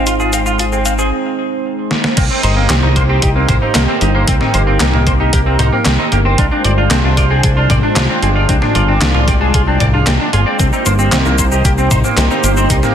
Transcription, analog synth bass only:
Already playing: G#1
2.17 C2
2.44 G1
2.70 C2
2.83 C2
2.96 C2
3.23 C2
3.49 C2
3.75 C2
4.02 G1
4.28 C2
4.54 G1
4.81 C2
4.94 C2
5.07 C2
5.33 C2
5.59 C2
5.86 C2
6.12 G1
6.38 C2
6.65 G1
6.91 C2
7.04 C2
7.17 C2
7.44 C2
7.70 C2
7.96 C2
8.23 G1
8.49 C2
8.75 G1
9.02 C2
9.15 C2
9.28 C2
9.54 C2
9.81 C2
10.07 C2
10.33 G1
10.60 C2
10.86 G1
11.12 C2
11.25 C2
11.38 C2
11.65 C2
11.91 C2
12.17 C2
12.44 G1
12.70 C2

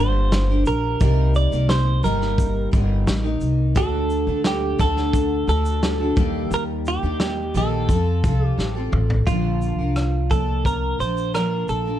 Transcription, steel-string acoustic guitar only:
Already playing: G3
0.00 A#3 D4 A#4
0.49 G3 A#3 D4 A#4
1.00 C3 G3 A#3 D#4 A#4
1.52 C3 G3 A#3 D#4 A#4
2.03 C3 G3 A#3 D#4 A#4
2.71 G3 A#3 D#4 A#4
3.22 A#3 D#4 A#4
3.75 D3 A3 D4 F#4 A4
4.27 D3 A3 D4 A4
4.78 D3 A3 D4 F#4 A4
5.47 A3 D4 F#4 A4
5.99 D4 F#4 A4
6.16 D#3 G3 A#3 D#4 G4
7.02 D#3 G3 A#3 D#4 G4
7.54 D#3 G3 A#3 D#4 G4
7.89 F3 C4 F4 A4
8.24 F3 C4 F4 A4
8.75 C4 F4 A4
9.27 A#2 D3 F3 A#3 D4 A#4
9.79 F3 A#3 D4 A#4
10.29 F3 A#3 D4
10.99 F3 A#3 D4 A#4
11.33 F3 A#3 D4 A#4
11.85 F3 A#3 D4 A#4

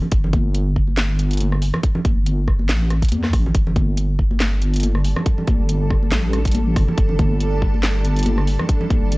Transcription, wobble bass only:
0.12 G1
2.16 G1
2.69 A1
3.12 E2
3.33 A1
3.55 G1
5.59 G1
6.12 A1
6.76 G1
6.98 G1
9.02 G1

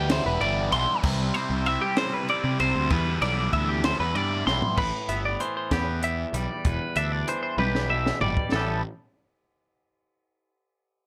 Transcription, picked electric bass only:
Already playing: D2
0.26 E1
0.41 G1
0.72 B1
1.03 C2
1.50 C2
2.44 C3
2.60 C2
2.76 D2
2.91 E2
3.22 B1
3.53 D2
4.00 E2
4.15 G2
4.47 B1
4.77 A1
5.09 G1
5.71 E2
6.33 B1
6.65 E1
6.96 D2
7.58 B1
8.21 G1
8.53 A1

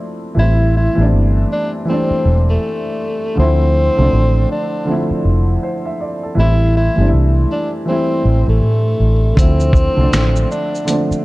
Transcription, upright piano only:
Already playing: F3 A3 C4 D4 E4
0.35 E3 G3 A3
0.39 C4 E4
0.95 E3 G3 A3
1.00 B3 D4
1.06 C4
1.85 E3 G3 A3
1.90 C4 D4
3.35 D3 F3 A3
3.40 C4 E4
3.96 D3 F3 A3
4.01 C4 D4
4.85 D3 F3 A3
4.90 C4 E4
5.63 C5
5.86 E5
6.00 D5
6.23 A4
6.35 E3 G3 A3
6.39 C4 E4
6.96 E3 G3 A3
7.00 C4 D4
7.08 E4
7.85 E3 G3 A3
7.90 C4 E4
9.35 D3 F3 A3
9.40 C4 E4
9.95 D3 F3 A3
10.00 C4 D4
10.85 D3 F3 A3
10.90 C4 D4

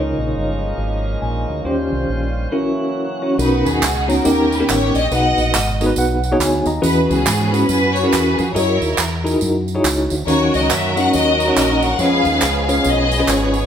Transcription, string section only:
3.40 D#4 F#4 B4
3.66 C#4 D#4 G#4
4.09 A#4
4.26 C#4 G4 A#4
4.52 B4
4.69 C#5
4.96 D#5
5.13 D#5 F#5
6.84 F#4 G#4 B4
7.10 B3 C#4 G#4
7.51 B4
7.68 F#4 G#4 B4
7.94 C#5
8.09 B4
8.36 G#4
8.53 E4 A#4 C#5
10.27 F#4 A#4 C#5
10.54 D#5
10.71 E5
10.97 F#5
11.14 F#4 A#4 D#5
11.57 D#5
11.83 F#5
12.00 G#4 B4 F5
12.67 F5
12.84 G#4 B4 D#5
13.28 G#4 C#5

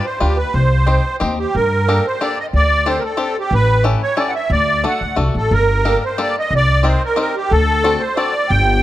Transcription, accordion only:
0.05 C5
0.20 G4
0.37 B4
0.53 C5
1.39 G4
1.55 A#4
2.06 C5
2.22 D5
2.40 D#5
2.55 D5
2.88 C5
3.00 A#4
3.04 A4
3.21 A4
3.40 G4
3.54 B4
4.03 C#5
4.19 D5
4.29 F#5
4.35 E5
4.52 D5
4.85 F#5
5.37 A4
5.53 A#4
6.05 C5
6.22 D5
6.39 D#5
6.56 D5
6.87 C5
7.05 A#4
7.20 A#4
7.37 G4
7.51 A4
8.00 C5
8.16 D5
8.49 G5

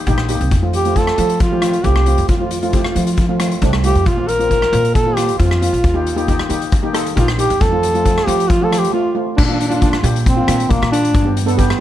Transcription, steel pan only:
0.07 A#3 D#4 G4
0.29 A#3 D#4 G4
0.63 A3 C4 F4
0.86 A3 C4 F4
0.96 A3 C4 F4
1.18 A3 C4 F4
1.51 A3 C4 G4
1.62 A3 C4 F4
1.83 A3 C4 F4
2.07 A3 C4 F4
2.40 A3 C4 F4
2.63 A3 C4 F4
2.73 A3 C4 G4
2.95 A3 C4 F4
3.29 A3 C4 F4
3.39 A3 C4 F4
3.62 A3 C4 D4
3.84 A3 C4 F4
4.17 A#3 C4 F4
4.39 A#3 C4 F4
4.49 A#3 C4 F4
4.72 A#3 C4 F4
5.06 A#3 C4 F4
5.17 A#3 C4 F4
5.40 A#3 C4 F4
5.62 A#3 C4 F4
5.94 A#3 D#4 G4
6.16 A#3 D#4 G4
6.27 A#3 D#4 G4
6.49 A#3 D#4 G4
6.83 A#3 D#4 G4
6.93 A#3 D#4 A4
7.16 A#3 D#4 G4
7.38 A#3 D#4 G4
7.72 A3 C4 F4
7.94 A3 C4 F4
8.05 A3 C4 F4
8.27 A3 C4 F4
8.61 A3 C4 F4
8.71 A3 C4 F4
8.93 A3 C4 F4
9.15 A3 C4 F4
9.48 A#3 D4 F4
9.70 A#3 D4 F4
9.81 A#3 D4 F4
10.03 A#3 D4 G4
10.37 A#3 D4 F4
10.47 A#3 D4 F4
10.69 A#3 D4 F4
10.91 A#3 D4 F4
11.25 B3 D4 G4
11.46 B3 D4 A4
11.57 B3 D4 G4

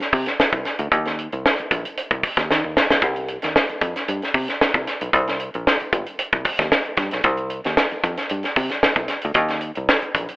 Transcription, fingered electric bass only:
0.13 C3
0.39 muted fingered electric bass stroke
0.53 C2
0.79 D2
0.92 D#2
1.33 C2
1.60 muted fingered electric bass stroke
1.72 A#1
2.11 C2
2.37 D#2
2.51 D#3
2.64 D#2
2.91 B1
3.02 C2
3.44 D#2
3.70 muted fingered electric bass stroke
3.81 F2
4.08 G2
4.34 C3
4.62 muted fingered electric bass stroke
4.75 C2
5.01 B1
5.14 C2
5.55 A#1
5.81 muted fingered electric bass stroke
5.93 G1
6.33 C2
6.59 D#2
6.97 G2
7.13 B1
7.24 C2
7.66 D#2
7.92 muted fingered electric bass stroke
8.04 F2
8.31 G2
8.57 C3
8.85 muted fingered electric bass stroke
8.96 C2
9.25 D2
9.35 D#2
9.77 C2
10.02 muted fingered electric bass stroke
10.15 A#1

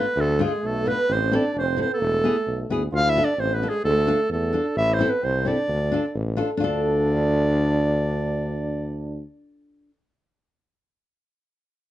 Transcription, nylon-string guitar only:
0.39 A3 D4 F4
0.86 A3 D4 F4
1.32 C4 E4 A4
1.76 C4 E4 A4
2.24 B3 E4 G#4
2.70 B3 E4 G#4
3.16 D4 F4 A4
3.62 D4 F4 A4
4.07 D4 F4 A4
4.53 D4 F4 A4
4.99 C4 E4 A4
5.45 C4 E4 A4
5.92 D4 F4 A4
6.37 D4 F4 A4
6.57 D4 F4
6.64 A4

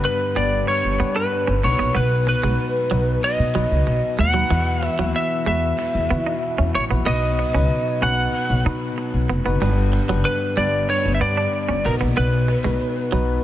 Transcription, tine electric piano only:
Already playing: G2 B3 D4 G4 B4
0.35 B3 D4 G4 B4
0.99 B3 D4 G4 B4
1.63 B2 B3 D4 F#4 B4
1.70 D#4
2.43 B3 D#4 F#4 B4
2.91 B3 D#4 F#4 B4
3.54 B3 D#4 F#4 B4
4.35 B3 D#4 F#4 B4
4.51 E3 B3 E4 F#4 B4
4.98 B3 E4 F#4 B4
5.46 B3 E4 F#4 B4
6.10 B3 E4 F#4 B4
6.90 B3 E4 F#4 B4
7.06 B2 B3 D#4 F#4 B4
7.54 B3 D#4 F#4 B4
8.01 B3 D#4 F#4 B4
8.65 B3 D#4 F#4 B4
9.45 B3 D#4 F#4 B4
9.61 G2 B3 D4 G4 B4
10.08 B3 D4 G4 B4
10.57 B3 D4 G4 B4
11.21 B3 D4 G4 B4
11.85 B2 B3 D#4 F#4 D#5
12.65 B3 D#4 F#4 B4
13.12 B3 D#4 F#4 B4

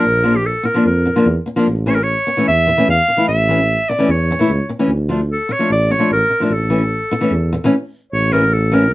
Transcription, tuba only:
0.05 A#1
0.85 F2
1.26 E2
1.66 A1
2.48 E2
2.88 E2
3.28 A1
4.08 E2
4.49 C#2
4.88 D2
5.70 A1
6.11 A1
6.50 A1
7.31 E2
8.13 A1

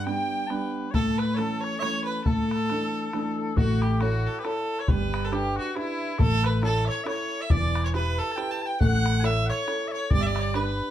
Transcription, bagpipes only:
0.07 G5
0.47 B4 A5
0.91 A4 C#5
1.20 B4
1.34 A4 C#5
1.64 C#5
1.79 C#5 E5
2.07 B4
2.26 A4
3.57 F#4
3.82 G4
4.00 F#4
4.39 G4
4.44 A4
4.79 C#5
4.88 B4
5.32 G4
5.56 F#4
5.75 E4
6.19 A4
6.43 B4
6.63 A4
6.85 C#5 E5
7.04 C#5 E5
7.41 E5
7.50 D5
7.84 C#5
7.94 B4
8.18 A4
8.32 G5 A5
8.62 G5 A5
8.80 F#5
9.20 G#5
9.24 E5
9.46 F#5
9.50 C#5
9.88 C#5 E5
10.11 D5
10.21 D5 E5
10.35 E5
10.39 D5
10.55 B4

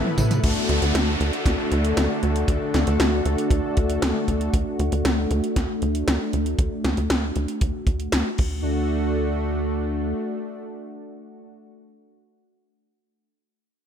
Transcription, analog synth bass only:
0.18 A2
0.44 D2
0.69 D2
0.82 D2
0.95 D2
1.20 D2
1.46 D2
1.72 D2
1.97 D2
2.23 D2
2.48 D2
2.74 D2
2.87 D2
3.00 D2
3.25 D2
3.51 D2
3.77 D2
4.02 D2
4.28 D2
4.54 D2
4.79 D2
4.92 D2
5.05 D2
5.31 D2
5.56 D2
5.82 D2
6.08 D2
6.33 D2
6.59 D2
6.85 D2
6.98 D2
7.10 D2
7.36 D2
7.61 D2
7.87 D2
8.13 D2
8.39 D2

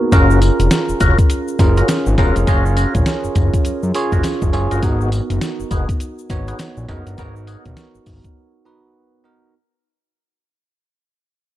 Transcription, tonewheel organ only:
0.12 C#4 F4 F#4 A#4
1.00 C#4 F4 F#4 A#4
1.77 C#4 F4 F#4 A#4
2.18 C#4 F4 F#4 A#4
2.47 C#4 F4 F#4 A#4
2.76 C#4 F4 F#4 A#4
4.12 C#4 F4 F#4 A#4
4.71 C#4 F4 F#4 A#4
4.82 B3 D#4 F#4 G#4
5.71 B3 D#4 F#4 G#4
6.48 B3 D#4 F#4 G#4
6.88 B3 D#4 F#4 G#4
7.18 B3 D#4 F#4 G#4
7.47 B3 D#4 F#4 G#4

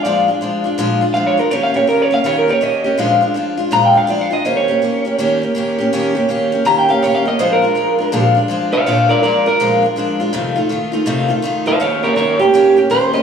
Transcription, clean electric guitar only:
0.03 D5
1.14 F5
1.26 C#5
1.39 A#4
1.51 C#5
1.63 F5
1.76 C#5
1.89 A#4
2.02 C#5
2.14 F5
2.26 C#5
2.39 A#4
2.50 C#5
2.63 D#5
3.73 A#5
3.85 G5
3.97 F5
4.10 D5
4.21 F5
4.33 D#5
4.46 C5
4.57 C#5
6.66 A#5
6.79 G5
6.90 F5
7.03 C#5
7.15 F5
7.28 D#5
7.40 C5
7.53 A#4
8.73 C#5 F5
8.86 C#5 F5
9.09 A#4 D5
9.23 A#4 D5
9.47 A#4
11.67 C5 F5
11.81 C#5 F5
12.04 A#4 C#5
12.17 A#4 C#5
12.40 G4
12.91 C5
13.14 D#5

